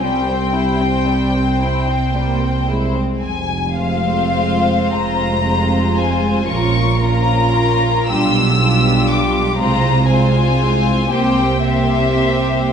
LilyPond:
<<
  \new Staff \with { instrumentName = "Violin section" } { \time 6/8 \key f \minor \tempo 4. = 38 g''2~ g''8 r8 | aes''8 f''4 bes''4 aes''8 | des'''8 bes''4 e'''4 d'''8 | bes''8 aes''4 g''8 e''4 | }
  \new Staff \with { instrumentName = "Violin section" } { \time 6/8 \key f \minor << { c''2. | r8 c''4. c''4 | bes'8 bes'4 g'8 g'4 | c''8 c''4 c''8 c''4 | } \\ { g16 c'16 e'16 c'16 g16 c'16 e'16 c'16 g16 c'16 e'16 c'16 | r8 f'4. f'4 | f'8 f'4 f'8 f'4 | f'8 f'4 g'8 g'4 | } >> }
  \new Staff \with { instrumentName = "Viola section" } { \time 6/8 \key f \minor <g c'>4. c'8 bes8 aes8 | r8 <aes c'>4. <aes c'>4 | <f des'>8 <f des'>4 <g d'>8 <g d'>4 | <aes c'>8 <aes c'>4 <bes c'>8 <bes c'>4 | }
  \new Staff \with { instrumentName = "Cello section" } { \clef bass \time 6/8 \key f \minor c,2. | f,4. f,4. | bes,4. b,4. | c4. c4. | }
  \new Staff \with { instrumentName = "Double bass section" } { \clef bass \time 6/8 \key f \minor c,2. | f,,4. f,,4. | bes,,4. b,,4. | c,4. c,4. | }
>>